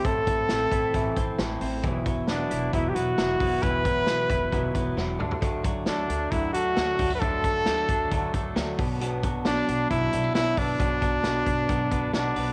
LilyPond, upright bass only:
\new Staff \with { instrumentName = "Upright bass" } { \clef bass \time 4/4 \key b \phrygian \tempo 4 = 134 a,,4 a,,8 a,,8 a,,8 a,,8 a,,8 a,,8 | e,,4 e,,8 e,,8 e,,8 e,,8 e,,8 e,,8 | e,,4 e,,8 e,,8 e,,8 e,,8 e,,8 d,8~ | d,4 d,8 d,8 d,8 d,8 d,8 d,8 |
d,4 d,8 d,8 d,8 d,8 d,8 b,,8~ | b,,4 b,,8 b,,8 b,,8 b,,8 b,,8 b,,8 | b,,4 b,,8 b,,8 b,,8 b,,8 b,,8 b,,8 | }